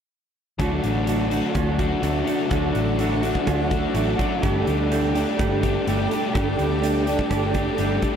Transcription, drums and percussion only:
0.60 kick loud
0.60 closed hi-hat medium
0.84 closed hi-hat medium
1.07 closed hi-hat medium
1.31 closed hi-hat medium
1.55 kick loud
1.55 closed hi-hat medium
1.79 kick medium
1.79 closed hi-hat medium
2.03 closed hi-hat medium
2.27 closed hi-hat medium
2.51 kick loud
2.51 closed hi-hat medium
2.75 closed hi-hat medium
2.99 closed hi-hat medium
3.23 closed hi-hat medium
3.35 kick medium
3.47 kick medium
3.47 closed hi-hat medium
3.71 kick medium
3.71 closed hi-hat medium
3.95 closed hi-hat medium
4.19 kick medium
4.19 closed hi-hat medium
4.43 kick loud
4.43 closed hi-hat medium
4.67 closed hi-hat medium
4.92 closed hi-hat medium
5.15 closed hi-hat medium
5.39 kick loud
5.39 closed hi-hat medium
5.63 kick medium
5.63 closed hi-hat medium
5.88 closed hi-hat medium
6.11 closed hi-hat medium
6.35 kick medium
6.35 closed hi-hat medium
6.59 closed hi-hat medium
6.83 closed hi-hat medium
7.07 closed hi-hat medium
7.19 kick medium
7.31 kick medium
7.31 closed hi-hat medium
7.54 kick medium
7.54 closed hi-hat medium
7.78 closed hi-hat medium
8.02 kick medium
8.02 closed hi-hat medium

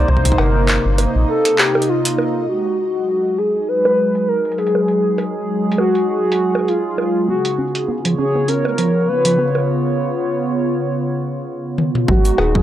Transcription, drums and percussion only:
0.08 kick soft
0.17 kick medium
0.25 kick medium
0.25 closed hi-hat medium
0.32 kick medium
0.38 cowbell medium
0.38 high bongo soft
0.68 clap loud
0.68 closed hi-hat soft
0.98 closed hi-hat medium
0.98 high bongo medium
1.45 closed hi-hat medium
1.58 clap loud
1.75 high bongo medium
1.82 closed hi-hat medium
2.05 closed hi-hat medium
2.18 high bongo medium
2.65 closed hi-hat medium
3.08 closed hi-hat soft
3.38 closed hi-hat medium
3.85 closed hi-hat medium
3.85 high bongo medium
4.15 closed hi-hat soft
4.45 closed hi-hat soft
4.52 closed hi-hat soft
4.58 closed hi-hat medium
4.67 closed hi-hat medium
4.75 high bongo soft
4.88 closed hi-hat medium
5.18 closed hi-hat medium
5.18 high bongo soft
5.72 closed hi-hat medium
5.78 high bongo medium
5.95 closed hi-hat soft
6.32 closed hi-hat medium
6.55 high bongo medium
6.68 closed hi-hat medium
6.98 high bongo medium
7.45 closed hi-hat medium
7.75 closed hi-hat soft
8.05 closed hi-hat medium
8.48 closed hi-hat soft
8.65 high bongo medium
8.78 closed hi-hat medium
9.25 closed hi-hat medium
9.55 high bongo soft
11.78 high tom medium
11.95 mid tom medium
12.08 kick loud
12.25 closed hi-hat medium
12.25 shaker medium
12.38 cowbell medium
12.38 high bongo medium
12.55 kick loud

